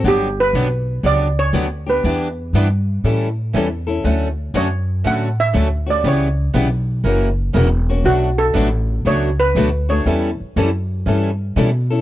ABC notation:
X:1
M:4/4
L:1/8
Q:"Swing" 1/4=120
K:D
V:1 name="Steel pan"
G B3 d c2 B- | B4- B z3 | z2 c2 f e2 d | c6 z2 |
F A3 c B2 c- | c6 z2 |]
V:2 name="Steel-string acoustic guitar"
[D,F,B,DG] z [D,F,B,DG] z [D,F,B,DG] z [D,F,B,DG] z | [E,G,DEB] z [E,G,DEB] z [E,G,CEA] z [E,G,CEA] z | [D,A,CFA] z [D,A,CFA] z [D,A,CFA] z [D,A,CFA] z | [C,G,B,EB] z [C,G,B,EB] z [F,CE^A] z [F,CEA] z |
[B,,F,A,DFB] z [B,,F,A,DFB] z [B,,F,A,DFB] z [B,,F,A,DFB] z | [E,G,CEA] z [E,G,CEA] z [E,G,CEA] z [E,G,CEA] z |]
V:3 name="Steel-string acoustic guitar"
[D,F,B,DG] z [D,F,B,DG] z [D,F,B,DG] z [D,F,B,DG] [B,DG] | [E,B,DG] z [E,B,DG] z [E,G,CEA] z [E,G,CEA] [CEA] | [D,F,A,CF] z [D,F,A,CF] z [D,F,A,CF] z [D,F,A,CF] [A,CF] | [C,E,B,CG] z [C,E,B,CG] z [C,E,^A,CF] z [C,E,A,CF] [A,CF] |
[B,,F,A,DF] z [B,,F,A,DF] z [B,,F,A,DF] z [B,,F,A,DF] [A,DF] | [E,G,CEA] z [E,G,CEA] z [E,G,CEA] z [E,G,CEA] [CEA] |]
V:4 name="Upright bass" clef=bass
G,,,2 B,,,2 C,,2 D,,2 | E,,2 G,,2 A,,2 E,,2 | D,,2 F,,2 A,,2 D,,2 | C,,2 B,,,2 F,,,2 E,,,2 |
B,,,2 A,,,2 C,,2 D,,2 | E,, z F,,2 G,,2 B,,2 |]